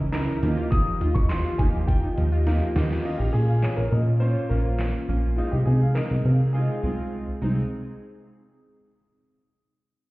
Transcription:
Already playing: analog synth bass C#2, analog synth pad C#3 E3 C#4 D#5
0.12 synth keys C#4 D#4 E4 A#4, synth pluck E4, grand piano A#5, snare, clap, closed hi-hat
0.28 synth pluck D#4
0.42 analog synth bass D#2, analog synth pad D#3 F4 G4, synth pluck F3, synth keys A#3 D#4 F4 G4, closed hi-hat
0.57 synth pluck F4
0.71 grand piano D#6, kick, closed hi-hat
0.86 synth pluck F3
1.01 analog synth bass D#2, synth pluck F4, closed hi-hat
1.15 synth pluck D#4, grand piano C#6, kick
1.29 synth pluck F3, grand piano C6, snare, clap, closed hi-hat
1.45 synth pluck F4
1.58 analog synth bass D#2, synth keys A#3 D#4 F4 G4, synth pluck D#4, grand piano G#5, kick, closed hi-hat
1.74 synth pluck F3
1.87 synth pluck F4, grand piano G5, kick, closed hi-hat
2.03 synth pluck D#4
2.18 analog synth bass D#2, synth pluck F3, closed hi-hat
2.32 synth pluck F4
2.46 synth keys A#3 D#4 F4 A#4, synth pluck D#4, snare, closed hi-hat
2.61 synth pluck F3
2.76 analog synth bass D#2, synth keys A#3 D#4 F4 G4, synth pluck F4, snare, open hi-hat
2.90 snare
3.04 synth keys A#3 C#4 F4, analog synth pad A#3 C#4 F4, grand piano F4, digital synth lead D#5, crash
3.18 analog synth bass A#1, grand piano G4
3.33 analog synth bass A#2, grand piano G#4
3.49 digital synth lead F5
3.63 digital synth lead C#5, snare, clap
3.76 analog synth bass A#1, grand piano A#4
3.91 analog synth bass A#2, grand piano A#4, digital synth lead D#5
4.20 synth keys A#3 C#4 F4, grand piano C5, digital synth lead C#5
4.49 analog synth bass A#1, synth keys A#3 C#4 F4, grand piano A#4, digital synth lead C5
4.79 snare, clap
5.09 analog synth bass A#1, synth keys A#3 C#4 F4
5.37 analog synth pad C3 C4 D#4 G#4, synth keys G#3 C4 D#4, grand piano F4, digital synth lead D#5
5.51 analog synth bass C2, grand piano G4
5.66 analog synth bass C3, grand piano G#4
5.82 digital synth lead F5
5.95 grand piano A#4, digital synth lead D#5, snare, clap
6.11 analog synth bass C2
6.25 analog synth bass C3, digital synth lead F5
6.53 synth keys G#3 C4 F4, grand piano G#4, digital synth lead D#5
6.83 analog synth bass C2, synth keys G#3 C4 F4, digital synth lead C5
7.41 analog synth bass C2, synth keys G#3 C4 D#4

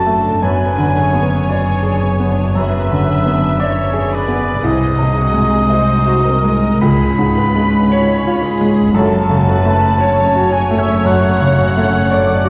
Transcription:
Already playing: double bass section F#1, cello section F#2, grand piano F#2 F#3 A3 F#4 D5, violin section A3 A5, viola section A4, oboe A5
0.07 grand piano A3
0.16 violin section D4
0.42 double bass section F#1, grand piano F#2, cello section F#2, violin section B3 G#5, viola section B4, oboe G#5
0.69 violin section D4
0.78 grand piano D3
0.96 violin section G#4, viola section C#5
1.13 grand piano B3
1.22 violin section B4
1.49 violin section G#4, grand piano D5
1.75 violin section D4
1.82 grand piano G#4
2.02 violin section B3
2.20 grand piano B3
2.29 violin section D4
2.55 grand piano F#2, violin section G#4 E5, viola section B4, oboe E5
2.82 violin section B4
2.91 grand piano D3
3.08 violin section G#4
3.26 grand piano B3
3.33 violin section D4
3.60 violin section B3, viola section C#5, grand piano D5
3.86 violin section D4
3.93 grand piano G#4
4.12 violin section G#4 D5, viola section B4, oboe D5
4.28 grand piano B3
4.40 violin section B4
4.63 grand piano C2, double bass section C2, cello section C2, violin section C4 D#5, viola section G#4, oboe D#5
4.92 violin section D#4
4.99 grand piano C3
5.18 violin section F#4
5.34 grand piano G#3
5.46 violin section G#4
5.70 violin section F#4, viola section C5, grand piano D#5
5.98 violin section D#4
6.06 grand piano F#4
6.25 violin section C4, viola section A#4
6.44 grand piano G#3
6.55 violin section D#4
6.81 grand piano C#2, cello section C#2, double bass section C#2, violin section G#3 B5, viola section G#4, oboe B5
7.09 violin section C#4
7.19 grand piano G#2
7.35 violin section F4, viola section B4
7.56 grand piano G#3
7.63 violin section C#4
7.90 violin section G#3, viola section C#5, grand piano C#5
8.16 violin section C#4
8.27 grand piano F4
8.42 violin section F4, viola section G#4
8.61 grand piano G#3
8.67 violin section C#4
8.94 double bass section F#1, grand piano F#2, cello section F#2, violin section A3 A5, viola section A4, oboe A5
9.19 violin section C#4
9.29 grand piano C#3
9.46 violin section F#4, viola section B4
9.65 grand piano A3
9.72 violin section C#4
9.98 violin section A3, viola section C#5, grand piano C#5
10.24 violin section C#4
10.35 grand piano F#4
10.50 violin section F#4 G#5, oboe G#5
10.71 grand piano A3
10.76 violin section C#4 E5, oboe E5
11.02 grand piano F#2, violin section A3
11.07 violin section F#5, oboe F#5
11.30 violin section C#4
11.40 grand piano C#3
11.56 violin section F#4
11.77 grand piano A3
11.83 violin section C#4
12.10 violin section A3, grand piano C#5, viola section D5
12.34 violin section C#4
12.45 grand piano F#4

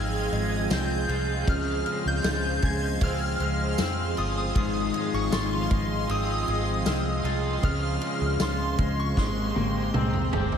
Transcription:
Already playing: fingered electric bass G#1, clean electric guitar G#2 G#3 C4 F4, overdriven electric guitar F3 G#3 C4 F4, ambient pad G#4 D#5 F5, celesta G#5 A#5, synth bell G#6
0.32 fingered electric bass G#1, clean electric guitar G#3, celesta D#5, ride
0.70 fingered electric bass C2, clean electric guitar C4, synth bell G6, snare, ride, tambourine
1.07 fingered electric bass C2, overdriven electric guitar G#3 C4 F4, clean electric guitar F4, ride
1.12 overdriven electric guitar F3
1.45 fingered electric bass C#2, overdriven electric guitar C#3 F3, clean electric guitar C#3 F4, ambient pad C5 F5 C6, kick, ride
1.49 overdriven electric guitar G#3 C4 F4, synth bell F6
1.86 clean electric guitar G#3, ride
2.05 fingered electric bass C#2, synth bell G6
2.24 fingered electric bass C#2, clean electric guitar F4, snare, ride, tambourine
2.62 fingered electric bass C#2, clean electric guitar G#3, celesta G#5, synth bell G#6, kick, ride
3.00 fingered electric bass C#2, overdriven electric guitar F3 G#3 C4, clean electric guitar C4, synth bell F6, kick, ride
3.05 overdriven electric guitar F4
3.40 fingered electric bass C#2, clean electric guitar G#3, synth bell F6, ride
3.78 fingered electric bass F2, clean electric guitar C4, snare, ride, tambourine
4.15 fingered electric bass G1, overdriven electric guitar C4 F4, clean electric guitar F4, celesta C6, synth bell D#6, ride
4.20 overdriven electric guitar G#3
4.53 fingered electric bass G#1, overdriven electric guitar G#2 D#3 F3, clean electric guitar G#2 F4, ambient pad D#5, kick, ride
4.57 overdriven electric guitar G#3 C4 F4, synth bell D#6
4.94 clean electric guitar G#3, ride
5.13 fingered electric bass G#1, synth bell C#6
5.32 fingered electric bass G#1, clean electric guitar F4, synth bell C6, snare, ride, tambourine
5.71 fingered electric bass G#1, clean electric guitar G#3, celesta F6, kick, ride
6.08 fingered electric bass G#1, overdriven electric guitar F3 G#3 C4, clean electric guitar C4, synth bell D#6, ride
6.12 overdriven electric guitar F4
6.48 fingered electric bass G#1, clean electric guitar G#3, ride
6.86 fingered electric bass C2, clean electric guitar C4, celesta F6, snare, ride, tambourine
7.23 fingered electric bass C2, overdriven electric guitar G#3 C4 F4, clean electric guitar F4, ride
7.28 overdriven electric guitar F3
7.61 fingered electric bass C#2, overdriven electric guitar C#3 F3, clean electric guitar C#3 F4, ambient pad G#3 C5, celesta D#6, synth bell F6, kick, ride
7.65 overdriven electric guitar G#3 C4 F4
8.01 clean electric guitar G#3, ride
8.21 fingered electric bass C#2
8.40 fingered electric bass C#2, clean electric guitar F4, synth bell C6, snare, ride, tambourine
8.79 fingered electric bass C#2, clean electric guitar G#3, celesta F6, kick, ride
9.00 synth bell C#6
9.15 fingered electric bass G#1, overdriven electric guitar G#3 A#3 C4, clean electric guitar G#3, ambient pad C5 G5 A#5, synth bell C6, kick, snare
9.20 overdriven electric guitar G4
9.55 fingered electric bass G#1, clean electric guitar A#3, high tom
9.94 fingered electric bass C2, clean electric guitar C4, mid tom
10.13 mid tom
10.31 fingered electric bass G1, overdriven electric guitar C4 G4, clean electric guitar G4, floor tom
10.36 overdriven electric guitar A#3
10.52 floor tom

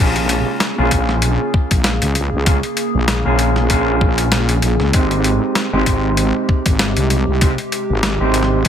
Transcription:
0.00 wobble bass A#1, ambient pad C#3 A#3 G#4, clean electric guitar A#3 C#4 F4 G#4
0.16 closed hi-hat
0.29 closed hi-hat
0.60 snare, closed hi-hat
0.78 wobble bass A#1, clean electric guitar A#3 C#4 F4 G#4
0.91 wobble bass A#1, kick, closed hi-hat
1.09 snare
1.22 closed hi-hat
1.54 kick
1.71 wobble bass A#1, kick, closed hi-hat
1.84 snare, closed hi-hat
2.02 wobble bass C#2, closed hi-hat
2.15 closed hi-hat
2.33 wobble bass C#2
2.46 clean electric guitar A#3 C#4 F4 G#4, kick, closed hi-hat
2.63 closed hi-hat
2.77 closed hi-hat
2.94 wobble bass A#1
3.08 snare, closed hi-hat
3.25 wobble bass A#1, clean electric guitar A#3 C#4 F4 G#4
3.39 closed hi-hat
3.56 snare
3.70 wobble bass A#1, clean electric guitar A#3 C#4 F4 G#4, kick, closed hi-hat
4.01 kick
4.18 closed hi-hat
4.32 snare, closed hi-hat
4.49 closed hi-hat
4.62 wobble bass A#1, closed hi-hat
4.80 wobble bass C#2, snare
4.93 wobble bass G#1, ambient pad C3 G#3 G4, clean electric guitar G#3 C4 D#4 G4, kick, closed hi-hat
5.11 closed hi-hat
5.24 closed hi-hat
5.55 snare, closed hi-hat
5.73 wobble bass G#1, clean electric guitar G#3 C4 D#4 G4
5.86 wobble bass G#1, kick, closed hi-hat
6.17 closed hi-hat
6.49 kick
6.66 wobble bass G#1, kick, closed hi-hat
6.79 snare, closed hi-hat
6.97 wobble bass C2, closed hi-hat
7.10 closed hi-hat
7.28 wobble bass C2
7.41 clean electric guitar G#3 C4 D#4 G4, ambient pad G#3, kick, closed hi-hat
7.58 closed hi-hat
7.72 closed hi-hat
7.90 wobble bass G#1
8.03 snare, closed hi-hat
8.20 wobble bass G#1, clean electric guitar G#3 C4 D#4 G4
8.34 closed hi-hat
8.43 snare
8.65 clean electric guitar G#3, closed hi-hat

